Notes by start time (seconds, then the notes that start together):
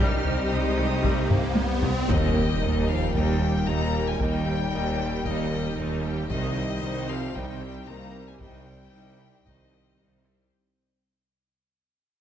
Already playing: G3 G4, riser
0.00 C2 C3 G3 C4 D#4 G4 C5 D#5 F6
0.25 C2 D#3, taiko low
0.51 C2 C3 D#6
0.78 C2 D#3, taiko rim
1.04 C2 G3, taiko
1.30 C2 D#3, taiko low-mid
1.56 C2 C3, taiko high
1.82 C2 D#3, taiko low
2.08 D#1 D#2 A#2 D#3 G3 A#3 D#4 G4 A#4 D#5, taiko, impact
2.35 G3 A#3 G4 G5, taiko rim
2.62 D#2 A#3 D#4 A#4 D#5
2.88 F3 G3 A#3 G4 F5 G5
3.14 D#2 G3 A#3 D#4 A#4 D#5 G5, taiko
3.41 G3 A#3 G4 G5
3.67 D#2 A#3 D#4 A#4 D#5 A#5
3.93 G3 A#3 G4 G5, taiko rim
4.07 G#3 G#5
4.19 D#2 G3 A#3 D#4 A#4 D#5 G5, taiko
4.46 G3 A#3 G4 G5
4.72 D#2 A#3 D#4 A#4 D#5
4.98 G3 A#3 G4 G5, taiko rim
5.25 D#2 D#3 A#3 D#4 A#4 D#5, taiko
5.51 G3 A#3 G4 G5
5.77 D#2 A#3 D#4 A#4 D#5
6.04 G3 A#3 G4 G5
6.30 C2 C3 D#3 G3 D#4 G4 C5 D#5, taiko
6.56 G3 C4 G4 C5
6.83 C2 D#3 D#4 C5 D#5
7.08 F3 G3 C4 G4 C5 F5
7.35 C2 D#3 G3 D#4 C5 D#5 G5, taiko
7.61 G3 C4 G4 C5, taiko rim
7.87 C2 D#3 A#3 D#4 C5 D#5 A#5
8.14 G3 C4 G4 C5
8.27 G#3 G#5
8.40 C2 D#3 G3 D#4 C5 D#5 G5, taiko
8.66 G3 C4 G4 C5
8.93 C2 D#3 D#4 C5 D#5
9.19 G3 C4 G4 C5
9.46 C2 D#3 D#4 C5 D#5, taiko
9.72 G3 C4 G4 C5, taiko rim
9.98 C2 D#3 D#4 C5 D#5
10.24 G3 C4 G4 C5, taiko rim